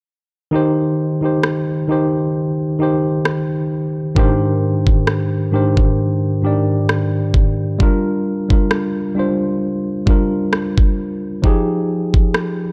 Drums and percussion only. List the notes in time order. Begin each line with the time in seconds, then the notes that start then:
1.43 cross-stick
3.25 cross-stick
4.16 kick
4.87 kick
5.07 cross-stick
5.77 kick
6.89 cross-stick
7.34 kick
7.80 kick
8.50 kick
8.71 cross-stick
10.07 kick
10.53 cross-stick
10.78 kick
11.44 kick
12.14 kick
12.34 cross-stick